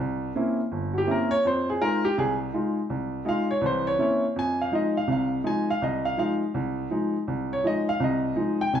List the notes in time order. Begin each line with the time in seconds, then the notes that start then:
0.00 C2
0.36 A#3 C4 C#4 E4
0.71 G1
0.93 F#4
0.98 G4
1.07 A#3 C4 C#4 E4
1.11 A#4
1.31 C#5
1.45 F2 C5
1.70 G#4
1.81 G#3 D#4 F4 A#4
2.05 G4
2.17 C2 C3 G#4
2.53 G#3 D#4 F4
2.90 C2
3.25 G#3 D#4 F4 F5
3.51 C#5
3.61 C2 E3
3.66 C5
3.87 C#5
3.99 A#3 C4 C#4 E4 C#5
4.36 F2 G#5
4.61 F5
4.72 F3 G#3 D#4 D#5
4.97 F5
5.07 C2 C3
5.12 F5
5.44 F3 G#3 D#4 G#5
5.70 F5
5.82 C2 D#5
6.05 F5
6.17 F3 G#3 D#4 F5
6.54 C2
6.90 F3 G#3 D#4
7.28 C2
7.53 C#5
7.63 F3 G#3 D#4 D#5
7.89 F5
8.00 C2 C3
8.04 D#5
8.36 F3 G#3 D#4
8.61 G5
8.73 C2 C3 G#5